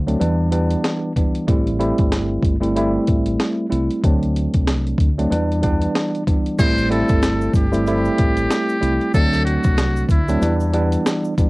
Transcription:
Already playing: D2
0.07 F#3 A3 C4 D4, closed hi-hat
0.19 E2 E3 G3 B3 D4, closed hi-hat
0.51 E3 G3 B3 D4, closed hi-hat
0.71 closed hi-hat
0.84 snare, closed hi-hat
1.16 E3 G3 B3 D4, kick, closed hi-hat
1.35 closed hi-hat
1.48 A1 G3 A3 C4 E4, kick, closed hi-hat
1.67 closed hi-hat
1.79 G3 A3 C4 E4, closed hi-hat
1.98 G1, kick, closed hi-hat
2.12 snare, closed hi-hat
2.43 G1, kick, closed hi-hat
2.61 G3 A3 C4 E4, closed hi-hat
2.76 G3 A3 C4 E4, closed hi-hat
3.07 A1, kick, closed hi-hat
3.26 closed hi-hat
3.40 snare, closed hi-hat
3.70 C2 G3 A3 C4 E4, closed hi-hat
3.91 closed hi-hat
4.04 D2 F#3 A3 C4 D4, kick, closed hi-hat
4.23 closed hi-hat
4.36 closed hi-hat
4.54 C2, kick, closed hi-hat
4.67 snare, closed hi-hat
4.87 closed hi-hat
4.98 D2, kick, closed hi-hat
5.18 F#3 A3 C4 D4, closed hi-hat
5.30 E2 E3 G3 B3 D4, closed hi-hat
5.52 closed hi-hat
5.62 E3 G3 B3 D4, kick, closed hi-hat
5.82 closed hi-hat
5.95 snare, closed hi-hat
6.15 closed hi-hat
6.27 E3 G3 B3 D4, kick, closed hi-hat
6.46 closed hi-hat
6.59 A1 G3 A3 C4 E4 C5, kick, closed hi-hat, crash, shaker
6.78 closed hi-hat, shaker
6.90 G3 A3 C4 E4 A4, closed hi-hat
7.08 G1, kick, closed hi-hat, shaker
7.22 snare, closed hi-hat, shaker
7.41 shaker
7.53 G1 G4, kick, closed hi-hat, shaker
7.72 G3 A3 C4 E4, closed hi-hat, shaker
7.87 G3 A3 C4 E4, closed hi-hat, shaker
8.05 shaker
8.18 A1, kick, closed hi-hat
8.37 closed hi-hat, shaker
8.51 snare, closed hi-hat, shaker
8.69 shaker
8.80 C2 G3 A3 C4 E4, closed hi-hat, shaker
9.00 closed hi-hat, shaker
9.14 D2 F#3 A3 C4 D4 A4, kick, closed hi-hat, shaker
9.33 snare, closed hi-hat, shaker
9.45 F#4, closed hi-hat
9.64 C2, kick, closed hi-hat, shaker
9.78 snare, closed hi-hat, shaker
9.96 shaker
10.09 D2 E4, kick, closed hi-hat, shaker
10.28 F#3 A3 C4 D4, closed hi-hat, shaker
10.41 E2 E3 G3 B3 D4, closed hi-hat, shaker
10.60 shaker
10.73 E3 G3 B3 D4, closed hi-hat
10.92 closed hi-hat, shaker
11.06 snare, closed hi-hat, shaker
11.24 shaker
11.38 E3 G3 B3 D4, kick, closed hi-hat, shaker

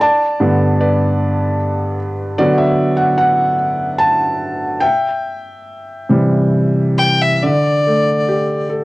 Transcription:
0.01 D5 A5
0.40 G2 D3 B3
0.80 B4 D5
2.38 D3 F#3 B3 F#4 D5
2.58 E5
2.97 F#5
3.18 F#5
3.98 A5
4.80 E5 G5
6.09 C3 E3 G3
6.98 G5
7.22 E5
7.36 E5
7.42 D3 D5
7.87 A3
8.28 G4
8.69 A4

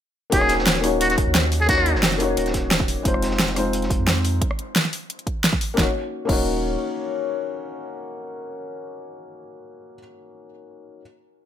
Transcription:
0.30 D#1 A#3 C#4 D#4 G#4, kick, closed hi-hat
0.34 F#4 C#5
0.41 cross-stick
0.49 snare, closed hi-hat
0.59 snare
0.67 snare, closed hi-hat
0.76 snare, closed hi-hat
0.81 A#3 C#4 D#4 F#4, cross-stick, closed hi-hat, open hi-hat
0.86 C#5
1.01 F#4, closed hi-hat
1.10 F#4, snare, closed hi-hat
1.18 D#1, kick, closed hi-hat
1.27 D#2
1.34 snare, closed hi-hat
1.52 closed hi-hat, open hi-hat
1.61 G#4
1.66 A#3 C#4 D#4 F#4, kick, closed hi-hat
1.71 C#5
1.78 cross-stick
1.86 closed hi-hat
1.95 F1, snare
2.03 snare, closed hi-hat, open hi-hat
2.11 snare, closed hi-hat
2.18 A#3 C#4 D#4 F#4, closed hi-hat, open hi-hat
2.23 C#5
2.37 D#1, closed hi-hat
2.46 snare, closed hi-hat
2.54 kick, snare, closed hi-hat
2.71 snare, closed hi-hat
2.80 kick, snare
2.88 closed hi-hat, open hi-hat
3.03 F1 G#3 C4 D#4 F4, kick, closed hi-hat
3.08 C5
3.14 cross-stick
3.22 snare, closed hi-hat
3.31 snare
3.39 snare, closed hi-hat
3.48 snare, closed hi-hat
3.54 G#3 C4 D#4 F4, cross-stick, closed hi-hat, open hi-hat
3.59 C5
3.73 closed hi-hat
3.82 snare, closed hi-hat
3.90 F1, kick, closed hi-hat
3.99 F2
4.07 snare, closed hi-hat
4.24 closed hi-hat, open hi-hat
4.42 kick, closed hi-hat
4.51 cross-stick
4.59 closed hi-hat
4.76 snare, closed hi-hat
4.85 snare, closed hi-hat
4.93 open hi-hat
5.10 closed hi-hat
5.19 closed hi-hat
5.27 kick, closed hi-hat
5.44 snare, closed hi-hat
5.53 kick, snare
5.61 open hi-hat
5.74 D#1 A#3 C#4 D#4, kick
5.78 F#4 C#5, snare
6.25 D#1 A#3 C#4 D#4, kick
6.29 F#4 C#5, crash

